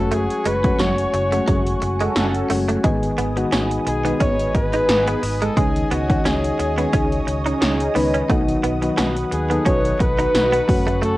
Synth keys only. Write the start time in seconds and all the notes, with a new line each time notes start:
Already playing: F#3 G#3 A3 C#4 F#4
0.64 F#3 G#3 A3 C#4 F#4
1.31 F#3 G#3 A3 C#4 F#4
2.50 F#3 G#3 A3 C#4 F#4
2.84 D#3 G#3 B3 D#4 G#4
3.36 D#3 G#3 B3 D#4 F#4
4.05 D#3 G#3 B3 D#4 B4
5.56 D#3 G#3 C#4 D#4 G#4
6.09 D#3 G#3 C#4 D#4 F#4
6.77 D#3 G#3 C#4 D#4 G#4
7.95 D#3 G#3 C#4 D#4 B4
8.29 D#3 F#3 B3 D#4 F#4
8.82 D#3 F#3 B3 D#4 F#4
9.50 D#3 F#3 B3 D#4 A4
10.68 F#3 A3 C#4 F#4